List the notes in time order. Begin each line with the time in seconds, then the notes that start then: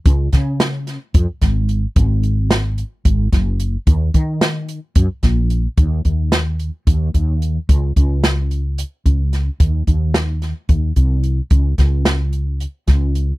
0.06 C#2, kick, closed hi-hat
0.33 C#3, kick, snare, closed hi-hat
0.60 snare, closed hi-hat
0.87 snare, closed hi-hat
1.14 F2, kick, closed hi-hat
1.42 G#1, kick, snare, closed hi-hat
1.69 closed hi-hat
1.96 G#1, kick, closed hi-hat
2.23 closed hi-hat
2.51 snare, closed hi-hat
2.78 closed hi-hat
3.05 G#1, kick, closed hi-hat
3.32 F#1, kick, snare, closed hi-hat
3.60 closed hi-hat
3.87 D#2, kick, closed hi-hat
4.14 D#3, kick, closed hi-hat
4.41 snare, closed hi-hat
4.69 closed hi-hat
4.95 F#2, kick, closed hi-hat
5.23 A#1, kick, snare, closed hi-hat
5.50 closed hi-hat
5.77 D#2, kick, closed hi-hat
6.05 D#2, kick, closed hi-hat
6.32 snare, closed hi-hat
6.59 closed hi-hat
6.87 D#2, kick, closed hi-hat
7.14 D#2, kick, closed hi-hat
7.42 closed hi-hat
7.69 C#2, kick, closed hi-hat
7.96 C#2, kick, closed hi-hat
8.24 snare, closed hi-hat
8.51 closed hi-hat
8.78 closed hi-hat
9.06 C#2, kick, closed hi-hat
9.33 snare, closed hi-hat
9.60 D#2, kick, closed hi-hat
9.87 D#2, kick, closed hi-hat
10.14 snare, closed hi-hat
10.42 snare, closed hi-hat
10.69 D#2, kick, closed hi-hat
10.96 C2, kick, closed hi-hat
11.23 closed hi-hat
11.50 C#2, kick, closed hi-hat
11.78 C#2, kick, snare, closed hi-hat
12.05 snare, closed hi-hat
12.33 closed hi-hat
12.60 closed hi-hat
12.87 C#2, kick, snare, closed hi-hat
13.15 closed hi-hat